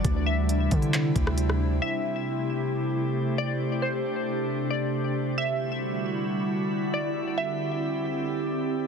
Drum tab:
HH |x---x-xxx-x-x---|----------------|----------------|----------------|
CP |--------x-------|----------------|----------------|----------------|
SD |-----------r-r--|----------------|----------------|----------------|
BD |o-----o---o-----|----------------|----------------|----------------|

HH |----------------|
CP |----------------|
SD |----------------|
BD |----------------|